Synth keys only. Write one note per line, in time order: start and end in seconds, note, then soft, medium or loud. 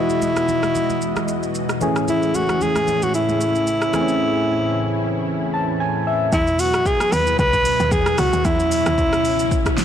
0.00 1.77 E3 medium
0.00 1.78 G#3 medium
0.00 1.78 F#4 medium
0.00 1.78 D#5 medium
1.81 3.89 E3 medium
1.81 3.90 A3 medium
1.81 3.90 C#4 medium
1.81 3.90 G#4 medium
3.93 6.02 E3 medium
3.93 6.02 A3 medium
3.93 4.01 C4 medium
3.93 6.03 G#4 medium
4.01 6.06 C#4 medium
5.54 5.78 A5 medium
5.80 6.05 G#5 medium
6.07 6.31 E5 medium